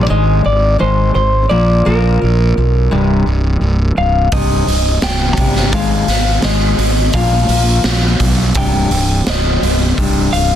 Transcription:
0.03 0.10 D5 medium
0.08 0.41 G#1 medium
0.08 0.42 G#2 medium
0.08 0.42 D#3 medium
0.08 0.43 G#3 medium
0.08 0.43 D#5 medium
0.44 0.76 G#1 medium
0.44 0.76 G#2 medium
0.44 0.77 D#3 medium
0.44 0.80 D5 medium
0.78 1.12 G#1 medium
0.78 1.13 G#2 medium
0.78 1.13 D#3 medium
0.78 1.13 G#3 medium
0.78 1.14 C5 medium
1.14 1.46 G#1 medium
1.14 1.47 G#2 medium
1.14 1.47 D#3 medium
1.14 1.49 C5 medium
1.49 1.81 A#1 medium
1.49 1.83 A#2 medium
1.49 1.83 F3 medium
1.49 1.84 A#3 medium
1.49 1.86 D5 medium
1.85 2.17 A#1 medium
1.85 2.19 A#2 medium
1.85 2.19 F3 medium
1.85 2.19 A#3 medium
1.85 4.03 A#4 medium
2.21 2.53 A#1 medium
2.21 2.53 A#2 medium
2.21 2.53 F3 medium
2.57 2.87 B1 medium
2.57 2.88 A#2 medium
2.57 2.89 F3 medium
2.91 3.22 C1 medium
2.91 3.24 C2 medium
2.91 3.25 G2 medium
2.91 3.25 C3 medium
3.26 3.57 C1 medium
3.26 3.59 G2 medium
3.61 3.92 C1 medium
3.61 3.93 C2 medium
3.61 3.94 G2 medium
3.97 4.28 C1 medium
3.97 4.29 C2 medium
3.97 4.29 G2 medium
3.97 4.33 F5 medium
4.32 4.62 C1 medium
4.32 4.65 C2 medium
4.32 4.66 G2 medium
4.32 4.66 C3 medium
4.32 5.03 D#5 medium
4.32 kick medium
4.32 open hi-hat medium
4.67 4.98 C1 medium
4.67 4.99 C2 medium
4.67 4.99 G2 medium
4.67 open hi-hat soft
5.02 5.33 C1 medium
5.02 5.35 C2 soft
5.02 5.35 G2 medium
5.02 5.74 G5 medium
5.02 snare medium
5.02 open hi-hat medium
5.37 5.71 C2 medium
5.37 5.71 G2 medium
5.37 5.71 C3 medium
5.37 kick medium
5.37 open hi-hat soft
5.56 snare soft
5.72 6.03 G#1 medium
5.72 6.06 G#2 medium
5.72 6.06 D#3 medium
5.72 6.07 G#3 medium
5.72 6.44 F5 medium
5.72 kick loud
5.72 open hi-hat medium
6.08 6.38 G#1 medium
6.08 6.40 G#2 medium
6.08 snare soft
6.08 open hi-hat soft
6.42 6.74 G#1 medium
6.42 6.77 G#2 medium
6.42 6.77 D#3 medium
6.42 6.77 G#3 medium
6.42 7.14 D#5 medium
6.42 snare medium
6.42 open hi-hat medium
6.78 7.09 G#1 medium
6.78 7.11 G#2 medium
6.78 7.11 D#3 medium
6.78 open hi-hat soft
7.13 7.45 A#1 medium
7.13 7.47 A#2 medium
7.13 7.47 F3 medium
7.13 7.48 A#3 medium
7.13 8.57 F5 medium
7.13 kick medium
7.13 open hi-hat medium
7.48 7.79 A#1 medium
7.48 7.82 A#2 medium
7.48 7.83 F3 medium
7.48 7.83 A#3 medium
7.48 open hi-hat soft
7.84 8.15 A#1 medium
7.84 snare medium
7.84 open hi-hat medium
8.20 8.51 B1 medium
8.20 8.52 A#2 medium
8.20 8.52 F3 medium
8.20 kick medium
8.20 open hi-hat soft
8.55 8.89 C2 medium
8.55 8.89 G2 medium
8.55 8.89 C3 medium
8.55 9.23 G5 medium
8.55 kick medium
8.55 open hi-hat medium
8.90 9.21 C1 medium
8.90 9.23 C2 medium
8.90 open hi-hat soft
9.26 9.57 C1 medium
9.26 9.58 G2 medium
9.26 9.77 D#5 medium
9.26 snare loud
9.26 open hi-hat medium
9.61 9.92 C1 medium
9.61 9.93 C2 medium
9.61 9.94 G2 medium
9.61 open hi-hat soft
9.97 10.28 C1 medium
9.97 10.30 C2 medium
9.97 10.31 G2 medium
9.97 10.31 C3 medium
9.97 kick medium
9.97 open hi-hat soft
10.33 10.55 C1 medium
10.33 10.55 C2 medium
10.33 10.55 G2 medium
10.33 10.55 F5 medium
10.33 open hi-hat soft

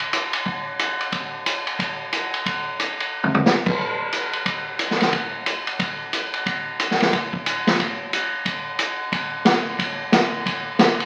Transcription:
0.13 hi-hat pedal medium
0.13 ride medium
0.33 ride medium
0.46 kick soft
0.79 hi-hat pedal soft
0.79 ride medium
1.00 ride soft
1.12 kick soft
1.12 ride soft
1.46 hi-hat pedal soft
1.46 ride medium
1.67 ride soft
1.79 kick soft
1.79 ride medium
2.12 hi-hat pedal medium
2.12 ride medium
2.34 ride soft
2.46 kick soft
2.46 ride soft
2.79 hi-hat pedal medium
2.79 ride medium
3.00 ride soft
3.24 floor tom soft
3.35 floor tom medium
3.46 snare medium
3.46 hi-hat pedal medium
3.66 kick medium
3.66 crash medium
3.79 kick soft
4.12 hi-hat pedal soft
4.12 ride medium
4.33 ride soft
4.46 kick soft
4.46 ride medium
4.79 hi-hat pedal medium
4.79 ride medium
4.91 snare soft
5.00 snare soft
5.00 ride soft
5.13 kick soft
5.13 ride soft
5.46 hi-hat pedal medium
5.46 ride medium
5.67 ride soft
5.79 kick soft
5.79 ride medium
6.13 hi-hat pedal soft
6.13 ride medium
6.34 ride soft
6.46 kick soft
6.46 ride soft
6.79 hi-hat pedal medium
6.79 ride medium
6.91 snare soft
7.00 snare soft
7.00 ride soft
7.13 kick soft
7.13 ride medium
7.33 kick soft
7.46 hi-hat pedal soft
7.46 ride medium
7.67 snare soft
7.67 ride soft
7.79 kick soft
7.79 ride soft
8.13 hi-hat pedal medium
8.13 ride medium
8.45 kick soft
8.45 ride medium
8.79 hi-hat pedal medium
8.79 ride medium
9.12 kick soft
9.12 ride medium
9.45 snare medium
9.45 hi-hat pedal soft
9.45 ride medium
9.79 kick soft
9.79 ride medium
10.12 snare medium
10.12 hi-hat pedal medium
10.12 ride medium
10.46 kick soft
10.46 ride medium
10.79 snare medium
10.79 hi-hat pedal medium
10.79 ride medium
11.00 ride soft

